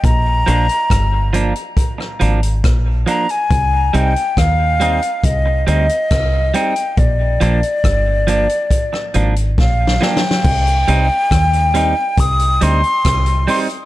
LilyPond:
<<
  \new Staff \with { instrumentName = "Flute" } { \time 4/4 \key c \minor \tempo 4 = 69 bes''2 r4. bes''16 aes''16~ | aes''8 g''8 f''4 ees''8 ees''4 g''8 | d''2. f''8 g''8~ | g''2 ees'''8 c'''4 c'''8 | }
  \new Staff \with { instrumentName = "Clean electric guitar" } { \time 4/4 \key c \minor r8 <f bes d'>8 r8 <f bes d'>8 r8 <f bes d'>8 r8 <f bes d'>8 | r8 <g c' ees'>8 r8 <g c' ees'>8 r8 <g c' ees'>8 r8 <g c' ees'>8 | r8 <f bes d'>8 r8 <f bes d'>8 r8 <f bes d'>8 r8 <f bes d'>8 | r8 <g c' ees'>8 r8 <g c' ees'>8 r8 <g c' ees'>8 r8 <g c' ees'>8 | }
  \new Staff \with { instrumentName = "Fingered electric bass" } { \clef bass \time 4/4 \key c \minor bes,,8 bes,,16 r16 g,,8. r8. aes,,8 bes,,8 r8 | c,8 c,16 r16 ees,8. r16 c,8 d,16 r16 c,8 r8 | bes,,8 bes,,16 r16 g,,8. r8. aes,,8 bes,,8 r8 | c,8 c,16 r16 ees,8. r16 c,8 d,16 r16 c,8 r8 | }
  \new DrumStaff \with { instrumentName = "Drums" } \drummode { \time 4/4 <hh bd>8 hh16 hh16 <hh bd ss>8 hh16 hh16 <hh bd>16 ss16 hh16 hh16 <hh bd ss>8 hh16 hh16 | <hh bd>8 hh16 hh16 <hh bd ss>8 hh16 hh16 <hh bd>8 hh16 hh16 <hh bd ss>8 hh16 hh16 | <hh bd>8 hh16 hh16 <hh bd ss>8 hh16 hh16 <hh bd>16 ss16 hh16 hh16 \tuplet 3/2 { <bd sn>16 r16 sn16 sn16 sn16 sn16 } | <cymc bd>16 hh16 hh8 <hh bd ss>16 hh16 hh8 <hh bd>16 hh16 hh16 hh16 <hh bd ss>16 hh16 hho16 hh16 | }
>>